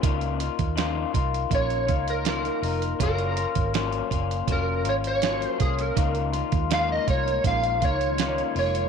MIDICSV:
0, 0, Header, 1, 6, 480
1, 0, Start_track
1, 0, Key_signature, -5, "major"
1, 0, Tempo, 741656
1, 21, Time_signature, 4, 2, 24, 8
1, 5753, End_track
2, 0, Start_track
2, 0, Title_t, "Electric slide guitar"
2, 0, Program_c, 0, 29
2, 1001, Note_on_c, 0, 73, 98
2, 1358, Note_on_c, 0, 70, 74
2, 1362, Note_off_c, 0, 73, 0
2, 1471, Note_off_c, 0, 70, 0
2, 1479, Note_on_c, 0, 70, 81
2, 1952, Note_off_c, 0, 70, 0
2, 1960, Note_on_c, 0, 70, 79
2, 2405, Note_off_c, 0, 70, 0
2, 2926, Note_on_c, 0, 70, 92
2, 3161, Note_off_c, 0, 70, 0
2, 3165, Note_on_c, 0, 73, 99
2, 3197, Note_off_c, 0, 73, 0
2, 3283, Note_on_c, 0, 73, 104
2, 3522, Note_off_c, 0, 73, 0
2, 3522, Note_on_c, 0, 72, 104
2, 3608, Note_off_c, 0, 72, 0
2, 3632, Note_on_c, 0, 68, 69
2, 3751, Note_off_c, 0, 68, 0
2, 3760, Note_on_c, 0, 70, 63
2, 3991, Note_off_c, 0, 70, 0
2, 4359, Note_on_c, 0, 77, 90
2, 4474, Note_off_c, 0, 77, 0
2, 4479, Note_on_c, 0, 75, 88
2, 4591, Note_off_c, 0, 75, 0
2, 4593, Note_on_c, 0, 73, 91
2, 4833, Note_off_c, 0, 73, 0
2, 4835, Note_on_c, 0, 77, 99
2, 5075, Note_off_c, 0, 77, 0
2, 5075, Note_on_c, 0, 73, 111
2, 5522, Note_off_c, 0, 73, 0
2, 5558, Note_on_c, 0, 73, 86
2, 5753, Note_off_c, 0, 73, 0
2, 5753, End_track
3, 0, Start_track
3, 0, Title_t, "Clean electric guitar"
3, 0, Program_c, 1, 27
3, 11, Note_on_c, 1, 49, 90
3, 16, Note_on_c, 1, 58, 88
3, 22, Note_on_c, 1, 63, 86
3, 25, Note_on_c, 1, 65, 100
3, 241, Note_off_c, 1, 65, 0
3, 249, Note_on_c, 1, 65, 56
3, 252, Note_off_c, 1, 63, 0
3, 256, Note_off_c, 1, 49, 0
3, 258, Note_off_c, 1, 58, 0
3, 259, Note_on_c, 1, 63, 53
3, 268, Note_on_c, 1, 58, 50
3, 488, Note_off_c, 1, 58, 0
3, 489, Note_on_c, 1, 49, 84
3, 490, Note_off_c, 1, 63, 0
3, 495, Note_off_c, 1, 65, 0
3, 496, Note_on_c, 1, 58, 89
3, 498, Note_on_c, 1, 63, 109
3, 503, Note_on_c, 1, 65, 104
3, 723, Note_off_c, 1, 65, 0
3, 730, Note_on_c, 1, 65, 60
3, 733, Note_off_c, 1, 63, 0
3, 735, Note_off_c, 1, 49, 0
3, 739, Note_off_c, 1, 58, 0
3, 741, Note_on_c, 1, 63, 47
3, 750, Note_on_c, 1, 58, 39
3, 968, Note_off_c, 1, 58, 0
3, 968, Note_on_c, 1, 49, 52
3, 976, Note_off_c, 1, 63, 0
3, 976, Note_off_c, 1, 65, 0
3, 976, Note_on_c, 1, 58, 56
3, 984, Note_on_c, 1, 63, 56
3, 989, Note_on_c, 1, 65, 53
3, 1200, Note_off_c, 1, 65, 0
3, 1208, Note_on_c, 1, 65, 51
3, 1212, Note_off_c, 1, 63, 0
3, 1215, Note_off_c, 1, 49, 0
3, 1219, Note_off_c, 1, 58, 0
3, 1220, Note_on_c, 1, 63, 44
3, 1227, Note_on_c, 1, 58, 45
3, 1448, Note_off_c, 1, 58, 0
3, 1451, Note_on_c, 1, 49, 74
3, 1454, Note_off_c, 1, 63, 0
3, 1455, Note_off_c, 1, 65, 0
3, 1456, Note_on_c, 1, 58, 85
3, 1462, Note_on_c, 1, 63, 77
3, 1465, Note_on_c, 1, 65, 85
3, 1687, Note_off_c, 1, 65, 0
3, 1695, Note_on_c, 1, 65, 57
3, 1696, Note_off_c, 1, 63, 0
3, 1697, Note_off_c, 1, 49, 0
3, 1699, Note_off_c, 1, 58, 0
3, 1704, Note_on_c, 1, 63, 52
3, 1715, Note_on_c, 1, 58, 42
3, 1933, Note_off_c, 1, 58, 0
3, 1935, Note_on_c, 1, 54, 79
3, 1938, Note_off_c, 1, 65, 0
3, 1940, Note_on_c, 1, 58, 73
3, 1943, Note_off_c, 1, 63, 0
3, 1947, Note_on_c, 1, 61, 80
3, 1949, Note_on_c, 1, 65, 89
3, 2166, Note_off_c, 1, 65, 0
3, 2173, Note_on_c, 1, 65, 60
3, 2176, Note_off_c, 1, 61, 0
3, 2179, Note_off_c, 1, 54, 0
3, 2181, Note_off_c, 1, 58, 0
3, 2184, Note_on_c, 1, 61, 46
3, 2192, Note_on_c, 1, 58, 41
3, 2415, Note_off_c, 1, 58, 0
3, 2418, Note_off_c, 1, 65, 0
3, 2419, Note_off_c, 1, 61, 0
3, 2419, Note_on_c, 1, 54, 76
3, 2423, Note_on_c, 1, 58, 86
3, 2427, Note_on_c, 1, 61, 86
3, 2433, Note_on_c, 1, 65, 93
3, 2648, Note_off_c, 1, 65, 0
3, 2656, Note_on_c, 1, 65, 57
3, 2659, Note_off_c, 1, 61, 0
3, 2660, Note_off_c, 1, 54, 0
3, 2663, Note_off_c, 1, 58, 0
3, 2667, Note_on_c, 1, 61, 50
3, 2676, Note_on_c, 1, 58, 52
3, 2897, Note_on_c, 1, 54, 53
3, 2898, Note_off_c, 1, 58, 0
3, 2899, Note_off_c, 1, 65, 0
3, 2903, Note_off_c, 1, 61, 0
3, 2906, Note_on_c, 1, 58, 52
3, 2911, Note_on_c, 1, 61, 56
3, 2915, Note_on_c, 1, 65, 60
3, 3128, Note_off_c, 1, 65, 0
3, 3135, Note_on_c, 1, 65, 55
3, 3139, Note_off_c, 1, 61, 0
3, 3140, Note_off_c, 1, 54, 0
3, 3144, Note_off_c, 1, 58, 0
3, 3147, Note_on_c, 1, 61, 47
3, 3157, Note_on_c, 1, 58, 36
3, 3374, Note_off_c, 1, 58, 0
3, 3376, Note_on_c, 1, 54, 83
3, 3379, Note_off_c, 1, 61, 0
3, 3379, Note_off_c, 1, 65, 0
3, 3382, Note_on_c, 1, 58, 71
3, 3387, Note_on_c, 1, 61, 83
3, 3392, Note_on_c, 1, 65, 82
3, 3606, Note_off_c, 1, 65, 0
3, 3614, Note_on_c, 1, 65, 57
3, 3617, Note_off_c, 1, 61, 0
3, 3619, Note_off_c, 1, 54, 0
3, 3622, Note_off_c, 1, 58, 0
3, 3625, Note_on_c, 1, 61, 55
3, 3634, Note_on_c, 1, 58, 47
3, 3853, Note_off_c, 1, 58, 0
3, 3855, Note_on_c, 1, 49, 67
3, 3858, Note_off_c, 1, 65, 0
3, 3860, Note_on_c, 1, 58, 86
3, 3861, Note_off_c, 1, 61, 0
3, 3864, Note_on_c, 1, 63, 84
3, 3871, Note_on_c, 1, 65, 83
3, 4085, Note_off_c, 1, 65, 0
3, 4092, Note_on_c, 1, 65, 63
3, 4095, Note_off_c, 1, 63, 0
3, 4099, Note_off_c, 1, 49, 0
3, 4101, Note_off_c, 1, 58, 0
3, 4103, Note_on_c, 1, 63, 50
3, 4111, Note_on_c, 1, 58, 45
3, 4334, Note_off_c, 1, 58, 0
3, 4334, Note_on_c, 1, 49, 78
3, 4337, Note_off_c, 1, 65, 0
3, 4338, Note_off_c, 1, 63, 0
3, 4342, Note_on_c, 1, 58, 85
3, 4346, Note_on_c, 1, 63, 81
3, 4350, Note_on_c, 1, 65, 91
3, 4566, Note_off_c, 1, 65, 0
3, 4574, Note_on_c, 1, 65, 55
3, 4578, Note_off_c, 1, 49, 0
3, 4578, Note_off_c, 1, 63, 0
3, 4582, Note_off_c, 1, 58, 0
3, 4586, Note_on_c, 1, 63, 46
3, 4595, Note_on_c, 1, 58, 40
3, 4814, Note_off_c, 1, 58, 0
3, 4815, Note_on_c, 1, 49, 48
3, 4818, Note_off_c, 1, 65, 0
3, 4819, Note_off_c, 1, 63, 0
3, 4821, Note_on_c, 1, 58, 54
3, 4827, Note_on_c, 1, 63, 61
3, 4833, Note_on_c, 1, 65, 63
3, 5043, Note_off_c, 1, 65, 0
3, 5051, Note_on_c, 1, 65, 50
3, 5057, Note_off_c, 1, 63, 0
3, 5058, Note_off_c, 1, 49, 0
3, 5062, Note_off_c, 1, 58, 0
3, 5065, Note_on_c, 1, 63, 44
3, 5073, Note_on_c, 1, 58, 38
3, 5293, Note_off_c, 1, 58, 0
3, 5295, Note_on_c, 1, 49, 81
3, 5296, Note_off_c, 1, 65, 0
3, 5297, Note_off_c, 1, 63, 0
3, 5300, Note_on_c, 1, 58, 76
3, 5304, Note_on_c, 1, 63, 88
3, 5309, Note_on_c, 1, 65, 91
3, 5525, Note_off_c, 1, 65, 0
3, 5533, Note_on_c, 1, 65, 61
3, 5537, Note_off_c, 1, 63, 0
3, 5538, Note_off_c, 1, 49, 0
3, 5541, Note_off_c, 1, 58, 0
3, 5544, Note_on_c, 1, 63, 53
3, 5554, Note_on_c, 1, 58, 43
3, 5753, Note_off_c, 1, 58, 0
3, 5753, Note_off_c, 1, 63, 0
3, 5753, Note_off_c, 1, 65, 0
3, 5753, End_track
4, 0, Start_track
4, 0, Title_t, "String machine"
4, 0, Program_c, 2, 50
4, 3860, Note_on_c, 2, 65, 81
4, 3862, Note_on_c, 2, 51, 60
4, 3862, Note_on_c, 2, 56, 61
4, 3862, Note_on_c, 2, 63, 62
4, 3863, Note_on_c, 2, 58, 62
4, 5753, Note_off_c, 2, 51, 0
4, 5753, Note_off_c, 2, 56, 0
4, 5753, Note_off_c, 2, 58, 0
4, 5753, Note_off_c, 2, 63, 0
4, 5753, Note_off_c, 2, 65, 0
4, 5753, End_track
5, 0, Start_track
5, 0, Title_t, "Fingered electric bass"
5, 0, Program_c, 3, 33
5, 21, Note_on_c, 3, 37, 105
5, 309, Note_off_c, 3, 37, 0
5, 382, Note_on_c, 3, 39, 91
5, 670, Note_off_c, 3, 39, 0
5, 741, Note_on_c, 3, 36, 82
5, 933, Note_off_c, 3, 36, 0
5, 977, Note_on_c, 3, 34, 91
5, 1224, Note_off_c, 3, 34, 0
5, 1224, Note_on_c, 3, 37, 77
5, 1607, Note_off_c, 3, 37, 0
5, 1697, Note_on_c, 3, 29, 82
5, 1891, Note_off_c, 3, 29, 0
5, 1942, Note_on_c, 3, 30, 105
5, 2230, Note_off_c, 3, 30, 0
5, 2304, Note_on_c, 3, 32, 84
5, 2591, Note_off_c, 3, 32, 0
5, 2662, Note_on_c, 3, 30, 72
5, 2854, Note_off_c, 3, 30, 0
5, 2897, Note_on_c, 3, 29, 99
5, 3144, Note_off_c, 3, 29, 0
5, 3144, Note_on_c, 3, 32, 78
5, 3527, Note_off_c, 3, 32, 0
5, 3626, Note_on_c, 3, 36, 80
5, 3817, Note_off_c, 3, 36, 0
5, 3862, Note_on_c, 3, 37, 110
5, 4150, Note_off_c, 3, 37, 0
5, 4223, Note_on_c, 3, 39, 98
5, 4511, Note_off_c, 3, 39, 0
5, 4581, Note_on_c, 3, 36, 75
5, 4773, Note_off_c, 3, 36, 0
5, 4817, Note_on_c, 3, 34, 100
5, 5061, Note_off_c, 3, 34, 0
5, 5061, Note_on_c, 3, 37, 79
5, 5445, Note_off_c, 3, 37, 0
5, 5536, Note_on_c, 3, 29, 84
5, 5730, Note_off_c, 3, 29, 0
5, 5753, End_track
6, 0, Start_track
6, 0, Title_t, "Drums"
6, 21, Note_on_c, 9, 36, 110
6, 22, Note_on_c, 9, 42, 95
6, 86, Note_off_c, 9, 36, 0
6, 87, Note_off_c, 9, 42, 0
6, 138, Note_on_c, 9, 42, 37
6, 203, Note_off_c, 9, 42, 0
6, 259, Note_on_c, 9, 42, 77
6, 324, Note_off_c, 9, 42, 0
6, 381, Note_on_c, 9, 42, 49
6, 383, Note_on_c, 9, 36, 90
6, 446, Note_off_c, 9, 42, 0
6, 448, Note_off_c, 9, 36, 0
6, 502, Note_on_c, 9, 42, 75
6, 508, Note_on_c, 9, 38, 96
6, 566, Note_off_c, 9, 42, 0
6, 573, Note_off_c, 9, 38, 0
6, 740, Note_on_c, 9, 36, 76
6, 743, Note_on_c, 9, 42, 65
6, 805, Note_off_c, 9, 36, 0
6, 807, Note_off_c, 9, 42, 0
6, 870, Note_on_c, 9, 42, 48
6, 934, Note_off_c, 9, 42, 0
6, 977, Note_on_c, 9, 36, 91
6, 980, Note_on_c, 9, 42, 65
6, 1041, Note_off_c, 9, 36, 0
6, 1045, Note_off_c, 9, 42, 0
6, 1102, Note_on_c, 9, 42, 34
6, 1167, Note_off_c, 9, 42, 0
6, 1220, Note_on_c, 9, 42, 62
6, 1223, Note_on_c, 9, 36, 89
6, 1284, Note_off_c, 9, 42, 0
6, 1287, Note_off_c, 9, 36, 0
6, 1344, Note_on_c, 9, 42, 53
6, 1408, Note_off_c, 9, 42, 0
6, 1457, Note_on_c, 9, 42, 82
6, 1465, Note_on_c, 9, 38, 99
6, 1521, Note_off_c, 9, 42, 0
6, 1530, Note_off_c, 9, 38, 0
6, 1586, Note_on_c, 9, 42, 33
6, 1651, Note_off_c, 9, 42, 0
6, 1705, Note_on_c, 9, 46, 54
6, 1770, Note_off_c, 9, 46, 0
6, 1825, Note_on_c, 9, 42, 51
6, 1890, Note_off_c, 9, 42, 0
6, 1942, Note_on_c, 9, 36, 110
6, 1944, Note_on_c, 9, 42, 104
6, 2006, Note_off_c, 9, 36, 0
6, 2009, Note_off_c, 9, 42, 0
6, 2061, Note_on_c, 9, 42, 36
6, 2125, Note_off_c, 9, 42, 0
6, 2180, Note_on_c, 9, 42, 75
6, 2245, Note_off_c, 9, 42, 0
6, 2300, Note_on_c, 9, 42, 52
6, 2303, Note_on_c, 9, 36, 86
6, 2365, Note_off_c, 9, 42, 0
6, 2368, Note_off_c, 9, 36, 0
6, 2421, Note_on_c, 9, 42, 76
6, 2428, Note_on_c, 9, 38, 97
6, 2486, Note_off_c, 9, 42, 0
6, 2492, Note_off_c, 9, 38, 0
6, 2540, Note_on_c, 9, 42, 35
6, 2605, Note_off_c, 9, 42, 0
6, 2661, Note_on_c, 9, 36, 71
6, 2666, Note_on_c, 9, 42, 57
6, 2725, Note_off_c, 9, 36, 0
6, 2730, Note_off_c, 9, 42, 0
6, 2790, Note_on_c, 9, 42, 50
6, 2855, Note_off_c, 9, 42, 0
6, 2897, Note_on_c, 9, 36, 93
6, 2899, Note_on_c, 9, 42, 73
6, 2961, Note_off_c, 9, 36, 0
6, 2964, Note_off_c, 9, 42, 0
6, 3139, Note_on_c, 9, 42, 75
6, 3204, Note_off_c, 9, 42, 0
6, 3263, Note_on_c, 9, 42, 52
6, 3328, Note_off_c, 9, 42, 0
6, 3378, Note_on_c, 9, 42, 75
6, 3386, Note_on_c, 9, 38, 108
6, 3442, Note_off_c, 9, 42, 0
6, 3451, Note_off_c, 9, 38, 0
6, 3508, Note_on_c, 9, 42, 36
6, 3573, Note_off_c, 9, 42, 0
6, 3623, Note_on_c, 9, 42, 74
6, 3626, Note_on_c, 9, 36, 80
6, 3688, Note_off_c, 9, 42, 0
6, 3691, Note_off_c, 9, 36, 0
6, 3745, Note_on_c, 9, 42, 54
6, 3809, Note_off_c, 9, 42, 0
6, 3862, Note_on_c, 9, 36, 116
6, 3863, Note_on_c, 9, 42, 106
6, 3926, Note_off_c, 9, 36, 0
6, 3928, Note_off_c, 9, 42, 0
6, 3979, Note_on_c, 9, 42, 36
6, 4044, Note_off_c, 9, 42, 0
6, 4100, Note_on_c, 9, 42, 67
6, 4165, Note_off_c, 9, 42, 0
6, 4220, Note_on_c, 9, 42, 50
6, 4223, Note_on_c, 9, 36, 95
6, 4284, Note_off_c, 9, 42, 0
6, 4288, Note_off_c, 9, 36, 0
6, 4340, Note_on_c, 9, 42, 78
6, 4347, Note_on_c, 9, 38, 97
6, 4405, Note_off_c, 9, 42, 0
6, 4411, Note_off_c, 9, 38, 0
6, 4580, Note_on_c, 9, 36, 85
6, 4581, Note_on_c, 9, 42, 62
6, 4644, Note_off_c, 9, 36, 0
6, 4645, Note_off_c, 9, 42, 0
6, 4709, Note_on_c, 9, 42, 43
6, 4774, Note_off_c, 9, 42, 0
6, 4816, Note_on_c, 9, 36, 84
6, 4818, Note_on_c, 9, 42, 76
6, 4881, Note_off_c, 9, 36, 0
6, 4883, Note_off_c, 9, 42, 0
6, 4942, Note_on_c, 9, 42, 34
6, 5006, Note_off_c, 9, 42, 0
6, 5060, Note_on_c, 9, 42, 65
6, 5062, Note_on_c, 9, 36, 92
6, 5125, Note_off_c, 9, 42, 0
6, 5127, Note_off_c, 9, 36, 0
6, 5183, Note_on_c, 9, 42, 45
6, 5248, Note_off_c, 9, 42, 0
6, 5296, Note_on_c, 9, 42, 83
6, 5305, Note_on_c, 9, 38, 105
6, 5361, Note_off_c, 9, 42, 0
6, 5369, Note_off_c, 9, 38, 0
6, 5425, Note_on_c, 9, 42, 31
6, 5490, Note_off_c, 9, 42, 0
6, 5539, Note_on_c, 9, 46, 51
6, 5604, Note_off_c, 9, 46, 0
6, 5662, Note_on_c, 9, 42, 48
6, 5726, Note_off_c, 9, 42, 0
6, 5753, End_track
0, 0, End_of_file